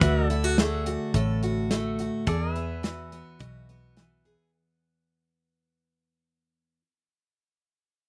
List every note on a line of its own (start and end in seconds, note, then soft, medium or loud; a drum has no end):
0.01 0.96 D2 medium
0.01 2.27 D3 medium
0.01 0.30 F#4 medium
0.01 0.27 B4 medium
0.01 0.28 E5 medium
0.01 kick loud
0.01 closed hi-hat medium
0.27 0.44 E4 medium
0.27 2.25 A4 medium
0.27 2.26 D5 medium
0.27 closed hi-hat medium
0.44 0.58 F#4 medium
0.58 1.70 A3 medium
0.58 0.86 G#4 medium
0.58 snare loud
0.58 closed hi-hat medium
0.86 1.15 F#4 medium
0.86 closed hi-hat medium
1.14 2.09 A1 medium
1.14 2.27 A2 medium
1.14 1.43 A4 medium
1.14 kick loud
1.14 closed hi-hat medium
1.43 1.99 F#4 medium
1.43 closed hi-hat medium
1.71 2.24 A3 medium
1.71 snare loud
1.71 closed hi-hat medium
1.99 2.24 F#4 medium
1.99 closed hi-hat medium
2.27 6.79 E2 medium
2.27 3.22 E2 medium
2.27 2.84 G#4 medium
2.27 2.53 A4 medium
2.27 2.54 D5 medium
2.27 kick loud
2.27 closed hi-hat medium
2.53 3.11 B3 medium
2.53 4.51 B4 medium
2.53 4.52 E5 medium
2.53 closed hi-hat soft
2.83 3.95 E3 medium
2.83 3.39 F#4 soft
2.83 snare loud
2.83 closed hi-hat medium
3.12 3.68 B3 medium
3.12 closed hi-hat medium
3.39 4.35 B1 medium
3.39 3.96 B2 medium
3.39 4.25 F#4 medium
3.39 kick medium
3.39 closed hi-hat medium
3.69 6.80 B3 medium
3.69 closed hi-hat soft
3.97 4.50 E3 medium
3.97 snare medium
3.97 closed hi-hat medium
4.25 4.50 G#4 medium
4.25 closed hi-hat medium